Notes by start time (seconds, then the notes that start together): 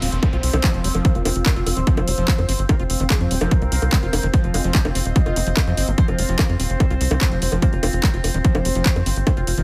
Already playing: C4 F4 C5 F5, downlifter
0.02 D#1 C4 F4, open hi-hat
0.12 F1 C5, closed hi-hat
0.23 G3, kick, closed hi-hat, high bongo
0.33 C2 F4, closed hi-hat
0.43 C2, open hi-hat
0.53 C2 D#3, closed hi-hat, high bongo
0.64 F3 C4, kick, clap, closed hi-hat
0.74 F1, closed hi-hat
0.84 F1 G3, open hi-hat
0.95 F1 F3, closed hi-hat, high bongo
1.05 A#3 C5, kick, closed hi-hat
1.15 F1 F4, closed hi-hat
1.25 F1 C4 F4, open hi-hat, high bongo
1.36 F1 F4, closed hi-hat
1.46 G3 A#4, kick, clap, closed hi-hat
1.56 F1 F4, closed hi-hat
1.66 F1 F4, open hi-hat, high bongo
1.77 D#1 D#3 C5, closed hi-hat
1.87 F3, kick, closed hi-hat
1.97 F1, closed hi-hat, high bongo
2.08 F1 G3, open hi-hat
2.18 F1 F3, closed hi-hat
2.28 kick, clap, closed hi-hat
2.38 F2 F4, closed hi-hat, high bongo
2.49 G1 C4, open hi-hat
2.59 G1, closed hi-hat
2.69 G3 A#4, kick, closed hi-hat, high bongo
2.79 F1 C4 F4, closed hi-hat
2.90 F1 C4, open hi-hat
3.00 F1 D#3 C4, closed hi-hat
3.10 F3 G#4, kick, clap, closed hi-hat, high bongo
3.21 F2 C4, closed hi-hat
3.31 D#1 G3 C4, open hi-hat
3.41 F1 F3 A#4, closed hi-hat, high bongo
3.51 kick, closed hi-hat
3.62 C2 F4, closed hi-hat
3.72 C2 C4, open hi-hat
3.82 C2, closed hi-hat, high bongo
3.92 G3 C4, kick, clap, closed hi-hat
4.03 F1 F4, closed hi-hat
4.13 F1, open hi-hat, high bongo
4.23 F1 D#3, closed hi-hat
4.34 F3 C5, kick, closed hi-hat
4.44 F1 F4, closed hi-hat
4.54 F1 G3 G#3 F4, open hi-hat, high bongo
4.64 F1 F3 F4, closed hi-hat
4.75 C5, kick, clap, closed hi-hat
4.85 F1 F4, closed hi-hat, high bongo
4.95 F1 C4 F4, open hi-hat
5.05 D#1 D#5, closed hi-hat
5.16 G3, kick, closed hi-hat
5.26 F1 F4, closed hi-hat, high bongo
5.36 F1 G3, open hi-hat
5.47 F1 F3, closed hi-hat
5.57 F3, kick, clap, closed hi-hat, high bongo
5.67 F2 F3, closed hi-hat
5.77 G1 C4, open hi-hat
5.88 G1 G#3, closed hi-hat
5.98 F3 C5, kick, closed hi-hat
6.08 F1 F4, closed hi-hat, high bongo
6.19 F1 G3 F4, open hi-hat
6.29 F1 F3 F4, closed hi-hat
6.39 A#4, kick, clap, closed hi-hat, high bongo
6.49 F2 F4, closed hi-hat
6.60 D#1 C4 F4, open hi-hat
6.70 F1 C5, closed hi-hat
6.80 G3, kick, closed hi-hat, high bongo
6.90 C2 F4, closed hi-hat
7.01 C2, open hi-hat
7.11 C2 D#3, closed hi-hat, high bongo
7.21 F3 C4, kick, clap, closed hi-hat
7.32 F1, closed hi-hat
7.42 F1 G3, open hi-hat
7.52 F1 F3, closed hi-hat, high bongo
7.62 A#3 C5, kick, closed hi-hat
7.73 F1 F4, closed hi-hat
7.83 F1 C4 F4, open hi-hat, high bongo
7.93 F1 F4, closed hi-hat
8.03 G3 A#4, kick, clap, closed hi-hat
8.14 F1 F4, closed hi-hat
8.24 F1 F4, open hi-hat, high bongo
8.34 D#1 D#3 C5, closed hi-hat
8.45 F3, kick, closed hi-hat
8.55 F1, closed hi-hat, high bongo
8.65 F1 G3, open hi-hat
8.75 F1 F3, closed hi-hat
8.86 kick, clap, closed hi-hat
8.96 F2 F4, closed hi-hat, high bongo
9.06 G1 C4, open hi-hat
9.16 G1, closed hi-hat
9.27 G3 C5, kick, closed hi-hat, high bongo
9.37 F1 F4, closed hi-hat
9.47 F1 F4, open hi-hat
9.58 F1 D#3 F4, closed hi-hat